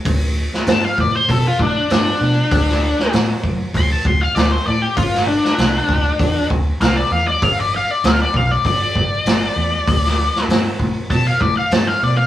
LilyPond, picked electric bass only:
\new Staff \with { instrumentName = "Picked electric bass" } { \clef bass \time 4/4 \key g \major \tempo 4 = 98 d,4 g,8 a,8 b,8 a,8 g,8 b,8 | d,4 a,8 fis,8 d,8 d,8 d,8 a,8 | g,,4 c,8 d,8 e,8 d,8 c,8 e,8 | g,,4 d,8 b,,8 g,,8 g,,8 g,,8 e,8 |
d,4 g,8 a,8 b,8 a,8 g,8 b,8 | }